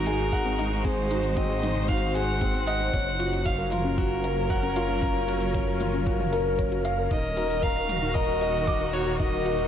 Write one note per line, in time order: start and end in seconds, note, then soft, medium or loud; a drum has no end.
0.00 2.91 G#1 loud
0.00 2.93 G#3 medium
0.00 0.59 D#4 medium
0.00 3.74 D#4 medium
0.00 1.11 F#4 loud
0.00 2.94 F#4 medium
0.00 0.86 A#4 loud
0.00 2.67 D#5 medium
0.06 0.15 F#4 medium
0.06 0.21 G#4 medium
0.06 closed hi-hat medium
0.32 0.38 G#4 loud
0.32 0.48 F#5 loud
0.32 kick loud
0.32 closed hi-hat soft
0.45 0.58 C4 loud
0.45 closed hi-hat soft
0.59 0.83 D#4 loud
0.59 closed hi-hat medium
0.64 4.51 C5 loud
0.72 0.84 D#4 medium
0.84 0.93 C4 medium
0.84 1.00 G#4 medium
0.84 1.38 C5 loud
0.84 kick loud
0.84 closed hi-hat soft
1.11 1.23 D#4 loud
1.11 1.36 F#4 medium
1.11 closed hi-hat medium
1.24 closed hi-hat soft
1.36 1.62 C4 medium
1.36 1.42 F#4 medium
1.36 1.90 D#5 loud
1.36 kick loud
1.36 closed hi-hat soft
1.50 1.62 G#4 loud
1.63 1.88 D#4 medium
1.63 closed hi-hat medium
1.63 mid tom medium
1.76 1.88 C4 medium
1.88 1.98 D#4 medium
1.88 2.14 F#4 medium
1.88 2.16 F5 loud
1.88 kick loud
1.88 closed hi-hat soft
2.15 2.24 F#4 medium
2.15 2.30 G#4 medium
2.15 2.66 F#5 loud
2.15 closed hi-hat medium
2.41 2.66 C4 medium
2.41 2.47 G#4 loud
2.41 kick loud
2.41 closed hi-hat soft
2.54 2.67 C4 loud
2.54 closed hi-hat soft
2.66 2.92 D#5 loud
2.66 3.47 F#5 loud
2.66 closed hi-hat medium
2.80 2.93 D#4 medium
2.93 7.08 F#1 loud
2.93 7.11 F#3 medium
2.93 3.02 C#4 medium
2.93 3.08 C#4 medium
2.93 kick loud
2.93 closed hi-hat soft
3.19 3.32 F4 loud
3.19 3.44 F#4 medium
3.19 closed hi-hat medium
3.33 8.35 C#4 medium
3.33 closed hi-hat soft
3.45 3.51 F#4 medium
3.45 3.72 F5 loud
3.45 3.70 F5 medium
3.45 kick loud
3.45 closed hi-hat soft
3.58 3.71 A#4 loud
3.71 3.96 F4 medium
3.71 6.58 A#4 medium
3.71 closed hi-hat medium
3.71 mid tom medium
3.77 9.68 A#4 medium
3.84 3.97 C#4 medium
3.97 4.07 F4 medium
3.97 4.23 F#4 loud
3.97 kick loud
3.97 closed hi-hat soft
4.24 4.33 F#4 medium
4.24 4.39 A#4 medium
4.24 closed hi-hat medium
4.49 4.55 A#4 loud
4.49 4.65 F#5 loud
4.49 kick loud
4.49 closed hi-hat soft
4.63 4.75 C#4 loud
4.63 closed hi-hat soft
4.76 5.01 F4 loud
4.76 closed hi-hat medium
4.89 5.01 F4 medium
5.02 5.11 C#4 medium
5.02 5.17 A#4 medium
5.02 kick loud
5.02 closed hi-hat soft
5.28 5.41 F4 loud
5.28 5.53 F#4 medium
5.28 closed hi-hat medium
5.41 closed hi-hat soft
5.54 5.79 C#4 medium
5.54 5.60 F#4 medium
5.54 kick loud
5.54 closed hi-hat soft
5.67 5.80 A#4 loud
5.80 6.05 F4 medium
5.80 closed hi-hat medium
5.80 mid tom medium
5.93 6.06 C#4 medium
6.06 6.15 F4 medium
6.06 6.31 F#4 medium
6.06 kick loud
6.06 closed hi-hat soft
6.20 mid tom medium
6.32 6.38 A#4 medium
6.32 6.48 A#4 medium
6.32 closed hi-hat medium
6.45 6.51 A#4 medium
6.58 6.84 C#4 medium
6.58 6.67 C#5 loud
6.58 kick loud
6.58 closed hi-hat soft
6.72 6.84 F#4 loud
6.72 closed hi-hat soft
6.85 7.10 F5 loud
6.85 closed hi-hat medium
6.98 7.07 A#4 loud
7.11 9.68 D#1 loud
7.11 9.68 D#3 medium
7.11 7.20 D#4 medium
7.11 7.26 D#4 medium
7.11 7.64 D#5 loud
7.11 kick loud
7.11 closed hi-hat soft
7.35 9.68 D#4 medium
7.35 9.68 F#4 medium
7.35 7.49 F#4 medium
7.35 7.62 A#4 medium
7.35 closed hi-hat medium
7.50 closed hi-hat soft
7.62 7.69 A#4 medium
7.62 8.16 F5 loud
7.62 7.88 A#5 medium
7.62 kick loud
7.62 closed hi-hat soft
7.76 7.89 D#5 loud
7.89 8.14 F#4 medium
7.89 closed hi-hat medium
7.89 mid tom medium
8.02 8.15 D#4 medium
8.14 8.40 A#4 loud
8.14 8.94 D#5 loud
8.14 kick loud
8.14 closed hi-hat soft
8.41 8.50 A#4 medium
8.41 8.56 D#5 medium
8.41 closed hi-hat medium
8.67 8.73 D#5 loud
8.67 8.82 D6 loud
8.67 kick loud
8.67 closed hi-hat soft
8.80 8.93 D#4 loud
8.80 closed hi-hat soft
8.93 9.18 F#4 loud
8.93 9.19 C#5 loud
8.93 closed hi-hat medium
9.06 9.19 F#4 medium
9.20 9.28 D#4 medium
9.20 9.34 D#5 medium
9.20 9.68 D#5 loud
9.20 kick loud
9.20 closed hi-hat soft
9.45 9.58 F#4 loud
9.45 9.68 A#4 medium
9.45 closed hi-hat medium
9.59 closed hi-hat soft